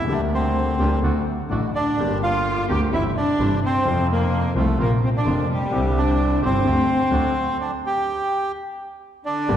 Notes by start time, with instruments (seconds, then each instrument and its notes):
Already playing: bandoneon E4
0.01 grand piano C#2 D3
0.06 grand piano D2 G3 A#3 G4, double bass D2, bandoneon A#3 D4 G4
0.11 bandoneon D4
0.34 bandoneon C4
0.78 grand piano D2 D3 G3 A#3 G4, double bass D2, bandoneon A#3 D4 G4
1.02 grand piano D2 D3 F#3 A3 F#4, double bass D2, bandoneon A3 D4 F#4
1.50 double bass A1, grand piano A1 A2 D3 F#3 A3 F#4, bandoneon A3 D4 F#4
1.75 cello D4, bandoneon D4
1.97 double bass G1, grand piano G1 G2 D3 G3 A#3 G4, bandoneon A#3 D4 G4
2.23 cello F4, bandoneon F4
2.69 double bass D2, grand piano D2 D3 G3 A#3 G4, bandoneon A#3 D4 G4, cello G4
2.92 grand piano G1 G2 C3 E3 G3 E4, double bass G1, bandoneon G3 C4 E4, cello E4
3.17 bandoneon D4, cello D4
3.39 double bass G1, grand piano G1 G2 C3 E3 G3 E4, bandoneon G3 C4 E4
3.64 cello C4, bandoneon C4
3.84 grand piano F2 C3 F3 A4, double bass F2, bandoneon C4 F4 A4
3.88 grand piano F4
4.11 cello A#3, bandoneon A#3
4.55 grand piano C2 C3 F3 A3 F4, double bass C2, bandoneon A3 C4 F4, cello A3
4.78 grand piano A#1 A#2 C3 F3 A#3 F4, double bass A#1, bandoneon A#3 C4 F4, cello A#3
5.04 cello C4, bandoneon C4
5.15 cello D4, bandoneon D4
5.25 double bass F1, grand piano F1 F2 C3 F3 A#3 F4, bandoneon A#3 C4 F4
5.50 cello G3, bandoneon G3
5.70 grand piano C2 C3 D3 G3 C4, double bass C2, bandoneon C4 D4 E4
5.74 grand piano E4
5.98 cello D4, bandoneon D4
6.42 grand piano G1 G2 D3 G3 C4 E4, double bass G1, bandoneon C4 D4 E4, cello C4
6.64 grand piano D2 D3 G3 A3 G4, double bass D2, bandoneon A3 D4 G4
7.11 grand piano D2 D3 F#3 A3 F#4, double bass D2, bandoneon A3 D4 F#4
7.61 bandoneon D4
7.86 bandoneon G4
9.25 cello D3, bandoneon D4
9.48 grand piano G1 G2 D3 A3 A#3 G4, double bass G1